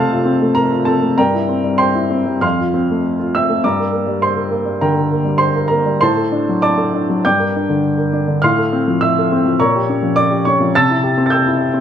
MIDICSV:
0, 0, Header, 1, 2, 480
1, 0, Start_track
1, 0, Key_signature, -1, "major"
1, 0, Tempo, 615385
1, 913, Time_signature, 4, 2, 24, 8
1, 1393, Tempo, 650054
1, 1873, Tempo, 591716
1, 4273, Tempo, 613497
1, 5713, Tempo, 578035
1, 9508, End_track
2, 0, Start_track
2, 0, Title_t, "Upright piano"
2, 0, Program_c, 0, 0
2, 0, Control_c, 0, 64, 127
2, 0, Note_on_c, 0, 41, 59
2, 0, Note_on_c, 0, 48, 47
2, 0, Note_on_c, 0, 57, 43
2, 0, Note_on_c, 0, 60, 47
2, 0, Note_on_c, 0, 65, 47
2, 0, Note_on_c, 0, 69, 57
2, 0, Note_on_c, 0, 72, 59
2, 0, Note_on_c, 0, 74, 57
2, 0, Note_on_c, 0, 77, 58
2, 0, Note_on_c, 0, 81, 69
2, 0, Note_on_c, 0, 84, 80
2, 0, Note_on_c, 0, 86, 67
2, 88, Note_off_c, 0, 65, 0
2, 88, Note_on_c, 0, 65, 49
2, 148, Note_off_c, 0, 48, 0
2, 198, Note_off_c, 0, 60, 0
2, 198, Note_on_c, 0, 60, 45
2, 269, Note_off_c, 0, 65, 0
2, 328, Note_off_c, 0, 57, 0
2, 328, Note_on_c, 0, 57, 46
2, 384, Note_off_c, 0, 60, 0
2, 403, Note_off_c, 0, 69, 0
2, 403, Note_off_c, 0, 77, 0
2, 427, Note_on_c, 0, 82, 77
2, 429, Note_off_c, 0, 81, 0
2, 434, Note_on_c, 0, 70, 58
2, 565, Note_on_c, 0, 65, 46
2, 656, Note_off_c, 0, 70, 0
2, 665, Note_on_c, 0, 81, 72
2, 669, Note_off_c, 0, 82, 0
2, 671, Note_on_c, 0, 60, 48
2, 681, Note_on_c, 0, 69, 55
2, 703, Note_off_c, 0, 57, 0
2, 751, Note_off_c, 0, 65, 0
2, 798, Note_on_c, 0, 57, 42
2, 865, Note_off_c, 0, 60, 0
2, 902, Note_off_c, 0, 69, 0
2, 911, Note_off_c, 0, 81, 0
2, 916, Note_off_c, 0, 57, 0
2, 917, Note_on_c, 0, 82, 74
2, 923, Note_on_c, 0, 79, 58
2, 924, Note_on_c, 0, 43, 58
2, 925, Control_c, 0, 64, 0
2, 926, Note_on_c, 0, 70, 57
2, 927, Note_off_c, 0, 72, 0
2, 930, Note_off_c, 0, 41, 0
2, 931, Note_off_c, 0, 74, 0
2, 931, Note_off_c, 0, 84, 0
2, 934, Note_off_c, 0, 86, 0
2, 1045, Control_c, 0, 64, 127
2, 1047, Note_on_c, 0, 64, 45
2, 1161, Note_on_c, 0, 60, 48
2, 1231, Note_off_c, 0, 64, 0
2, 1277, Note_on_c, 0, 55, 44
2, 1349, Note_off_c, 0, 60, 0
2, 1367, Note_off_c, 0, 79, 0
2, 1368, Note_off_c, 0, 70, 0
2, 1388, Note_on_c, 0, 84, 76
2, 1392, Note_on_c, 0, 79, 56
2, 1395, Note_off_c, 0, 82, 0
2, 1395, Note_on_c, 0, 72, 61
2, 1513, Note_on_c, 0, 64, 46
2, 1629, Note_on_c, 0, 60, 48
2, 1659, Note_off_c, 0, 55, 0
2, 1707, Note_off_c, 0, 64, 0
2, 1747, Note_on_c, 0, 55, 43
2, 1824, Note_off_c, 0, 60, 0
2, 1843, Note_off_c, 0, 79, 0
2, 1844, Note_off_c, 0, 72, 0
2, 1850, Note_off_c, 0, 43, 0
2, 1851, Note_off_c, 0, 84, 0
2, 1856, Note_on_c, 0, 89, 71
2, 1858, Note_on_c, 0, 41, 53
2, 1862, Note_on_c, 0, 84, 58
2, 1865, Note_on_c, 0, 77, 59
2, 1869, Note_off_c, 0, 55, 0
2, 1890, Control_c, 0, 64, 0
2, 2003, Note_on_c, 0, 65, 47
2, 2004, Control_c, 0, 64, 127
2, 2119, Note_on_c, 0, 60, 44
2, 2195, Note_off_c, 0, 65, 0
2, 2256, Note_on_c, 0, 57, 45
2, 2311, Note_off_c, 0, 60, 0
2, 2322, Note_off_c, 0, 84, 0
2, 2324, Note_off_c, 0, 77, 0
2, 2351, Note_off_c, 0, 89, 0
2, 2486, Note_on_c, 0, 65, 44
2, 2612, Note_on_c, 0, 88, 75
2, 2621, Note_on_c, 0, 60, 48
2, 2623, Note_on_c, 0, 76, 59
2, 2633, Note_off_c, 0, 57, 0
2, 2676, Note_off_c, 0, 65, 0
2, 2731, Note_on_c, 0, 57, 41
2, 2804, Note_off_c, 0, 41, 0
2, 2804, Note_off_c, 0, 60, 0
2, 2837, Note_off_c, 0, 76, 0
2, 2847, Note_off_c, 0, 57, 0
2, 2847, Note_off_c, 0, 88, 0
2, 2848, Note_on_c, 0, 43, 58
2, 2849, Note_on_c, 0, 86, 66
2, 2854, Note_on_c, 0, 74, 51
2, 2858, Control_c, 0, 64, 0
2, 2861, Note_on_c, 0, 82, 49
2, 2979, Note_on_c, 0, 70, 42
2, 2984, Control_c, 0, 64, 127
2, 3082, Note_on_c, 0, 58, 47
2, 3161, Note_off_c, 0, 70, 0
2, 3198, Note_on_c, 0, 55, 44
2, 3273, Note_off_c, 0, 58, 0
2, 3294, Note_off_c, 0, 74, 0
2, 3297, Note_off_c, 0, 82, 0
2, 3322, Note_on_c, 0, 84, 69
2, 3324, Note_off_c, 0, 86, 0
2, 3328, Note_on_c, 0, 72, 55
2, 3437, Note_on_c, 0, 70, 44
2, 3556, Note_on_c, 0, 58, 46
2, 3584, Note_off_c, 0, 55, 0
2, 3631, Note_off_c, 0, 70, 0
2, 3671, Note_on_c, 0, 55, 42
2, 3750, Note_off_c, 0, 58, 0
2, 3771, Note_off_c, 0, 72, 0
2, 3774, Note_off_c, 0, 43, 0
2, 3800, Note_off_c, 0, 84, 0
2, 3802, Note_on_c, 0, 82, 67
2, 3803, Note_on_c, 0, 50, 45
2, 3808, Note_on_c, 0, 70, 54
2, 3809, Note_on_c, 0, 79, 55
2, 3866, Note_off_c, 0, 55, 0
2, 3903, Note_off_c, 0, 70, 0
2, 3915, Note_on_c, 0, 70, 44
2, 3990, Note_off_c, 0, 50, 0
2, 4044, Note_on_c, 0, 58, 44
2, 4105, Note_off_c, 0, 70, 0
2, 4151, Note_on_c, 0, 55, 45
2, 4230, Note_off_c, 0, 58, 0
2, 4247, Note_off_c, 0, 79, 0
2, 4260, Note_on_c, 0, 84, 71
2, 4268, Note_on_c, 0, 72, 57
2, 4275, Note_off_c, 0, 82, 0
2, 4399, Note_on_c, 0, 70, 44
2, 4490, Note_off_c, 0, 72, 0
2, 4495, Note_on_c, 0, 82, 71
2, 4497, Note_off_c, 0, 70, 0
2, 4503, Note_off_c, 0, 84, 0
2, 4506, Note_on_c, 0, 58, 49
2, 4509, Note_on_c, 0, 70, 56
2, 4531, Note_off_c, 0, 55, 0
2, 4633, Note_on_c, 0, 55, 42
2, 4699, Note_off_c, 0, 58, 0
2, 4732, Note_off_c, 0, 70, 0
2, 4741, Note_off_c, 0, 82, 0
2, 4751, Note_off_c, 0, 55, 0
2, 4752, Note_on_c, 0, 84, 75
2, 4762, Control_c, 0, 64, 0
2, 4762, Note_on_c, 0, 72, 58
2, 4763, Note_on_c, 0, 45, 57
2, 4768, Note_on_c, 0, 81, 57
2, 4879, Note_on_c, 0, 69, 44
2, 4913, Control_c, 0, 64, 127
2, 4997, Note_on_c, 0, 62, 48
2, 5064, Note_off_c, 0, 69, 0
2, 5130, Note_on_c, 0, 54, 43
2, 5182, Note_off_c, 0, 62, 0
2, 5201, Note_off_c, 0, 72, 0
2, 5203, Note_off_c, 0, 81, 0
2, 5227, Note_off_c, 0, 84, 0
2, 5233, Note_on_c, 0, 86, 77
2, 5236, Note_on_c, 0, 74, 59
2, 5239, Note_on_c, 0, 81, 58
2, 5352, Note_on_c, 0, 69, 47
2, 5478, Note_on_c, 0, 62, 45
2, 5506, Note_off_c, 0, 54, 0
2, 5547, Note_off_c, 0, 69, 0
2, 5604, Note_on_c, 0, 54, 44
2, 5671, Note_off_c, 0, 62, 0
2, 5689, Note_off_c, 0, 74, 0
2, 5691, Note_off_c, 0, 81, 0
2, 5694, Note_off_c, 0, 45, 0
2, 5716, Note_off_c, 0, 86, 0
2, 5720, Note_off_c, 0, 54, 0
2, 5723, Note_on_c, 0, 91, 76
2, 5724, Note_on_c, 0, 79, 57
2, 5728, Note_on_c, 0, 86, 57
2, 5729, Control_c, 0, 64, 0
2, 5732, Note_on_c, 0, 43, 56
2, 5844, Note_on_c, 0, 70, 47
2, 5886, Control_c, 0, 64, 127
2, 5986, Note_on_c, 0, 62, 46
2, 6038, Note_off_c, 0, 70, 0
2, 6094, Note_on_c, 0, 50, 46
2, 6169, Note_off_c, 0, 62, 0
2, 6178, Note_off_c, 0, 79, 0
2, 6180, Note_off_c, 0, 86, 0
2, 6210, Note_off_c, 0, 91, 0
2, 6330, Note_on_c, 0, 70, 45
2, 6456, Note_on_c, 0, 62, 49
2, 6477, Note_off_c, 0, 50, 0
2, 6522, Note_off_c, 0, 70, 0
2, 6579, Note_on_c, 0, 50, 43
2, 6646, Note_off_c, 0, 62, 0
2, 6670, Note_off_c, 0, 43, 0
2, 6695, Note_off_c, 0, 50, 0
2, 6695, Note_on_c, 0, 89, 80
2, 6703, Control_c, 0, 64, 0
2, 6711, Note_on_c, 0, 84, 61
2, 6714, Note_on_c, 0, 45, 59
2, 6716, Note_on_c, 0, 77, 63
2, 6833, Note_on_c, 0, 69, 45
2, 6847, Control_c, 0, 64, 127
2, 6952, Note_on_c, 0, 60, 49
2, 7015, Note_off_c, 0, 69, 0
2, 7076, Note_on_c, 0, 53, 46
2, 7134, Note_off_c, 0, 60, 0
2, 7149, Note_off_c, 0, 84, 0
2, 7152, Note_off_c, 0, 77, 0
2, 7174, Note_off_c, 0, 89, 0
2, 7186, Note_on_c, 0, 88, 78
2, 7199, Note_on_c, 0, 76, 61
2, 7329, Note_on_c, 0, 69, 47
2, 7445, Note_on_c, 0, 60, 49
2, 7448, Note_off_c, 0, 53, 0
2, 7502, Note_off_c, 0, 69, 0
2, 7558, Note_on_c, 0, 53, 46
2, 7620, Note_off_c, 0, 60, 0
2, 7633, Note_off_c, 0, 76, 0
2, 7635, Note_off_c, 0, 45, 0
2, 7659, Note_off_c, 0, 88, 0
2, 7665, Note_off_c, 0, 53, 0
2, 7666, Control_c, 0, 64, 0
2, 7673, Note_on_c, 0, 82, 60
2, 7674, Note_on_c, 0, 85, 78
2, 7678, Note_on_c, 0, 46, 59
2, 7682, Note_on_c, 0, 73, 60
2, 7809, Note_on_c, 0, 67, 48
2, 7822, Control_c, 0, 64, 127
2, 7921, Note_on_c, 0, 61, 46
2, 7982, Note_off_c, 0, 67, 0
2, 8031, Note_on_c, 0, 53, 45
2, 8097, Note_off_c, 0, 61, 0
2, 8108, Note_off_c, 0, 82, 0
2, 8113, Note_off_c, 0, 73, 0
2, 8141, Note_off_c, 0, 85, 0
2, 8141, Note_on_c, 0, 86, 82
2, 8144, Note_on_c, 0, 74, 62
2, 8264, Note_on_c, 0, 67, 45
2, 8358, Note_off_c, 0, 74, 0
2, 8373, Note_off_c, 0, 86, 0
2, 8385, Note_on_c, 0, 85, 76
2, 8397, Note_on_c, 0, 61, 49
2, 8401, Note_off_c, 0, 53, 0
2, 8404, Note_on_c, 0, 73, 60
2, 8447, Note_off_c, 0, 67, 0
2, 8511, Note_on_c, 0, 53, 44
2, 8573, Note_off_c, 0, 61, 0
2, 8591, Note_off_c, 0, 46, 0
2, 8609, Note_off_c, 0, 73, 0
2, 8615, Note_off_c, 0, 85, 0
2, 8618, Note_off_c, 0, 53, 0
2, 8618, Control_c, 0, 64, 0
2, 8634, Note_on_c, 0, 93, 90
2, 8639, Note_on_c, 0, 81, 73
2, 8641, Note_on_c, 0, 88, 73
2, 8642, Note_on_c, 0, 48, 58
2, 8758, Note_on_c, 0, 64, 46
2, 8772, Control_c, 0, 64, 127
2, 8868, Note_on_c, 0, 67, 50
2, 8931, Note_off_c, 0, 64, 0
2, 8986, Note_on_c, 0, 60, 47
2, 9013, Note_off_c, 0, 81, 0
2, 9014, Note_off_c, 0, 88, 0
2, 9039, Note_off_c, 0, 93, 0
2, 9044, Note_off_c, 0, 67, 0
2, 9056, Note_on_c, 0, 93, 54
2, 9091, Note_on_c, 0, 91, 69
2, 9095, Note_off_c, 0, 93, 0
2, 9102, Note_on_c, 0, 79, 53
2, 9102, Note_on_c, 0, 88, 58
2, 9228, Note_on_c, 0, 64, 49
2, 9342, Note_on_c, 0, 67, 45
2, 9351, Note_off_c, 0, 60, 0
2, 9402, Note_off_c, 0, 64, 0
2, 9451, Note_on_c, 0, 60, 48
2, 9508, Note_off_c, 0, 48, 0
2, 9508, Note_off_c, 0, 60, 0
2, 9508, Note_off_c, 0, 67, 0
2, 9508, Note_off_c, 0, 79, 0
2, 9508, Note_off_c, 0, 88, 0
2, 9508, Note_off_c, 0, 91, 0
2, 9508, End_track
0, 0, End_of_file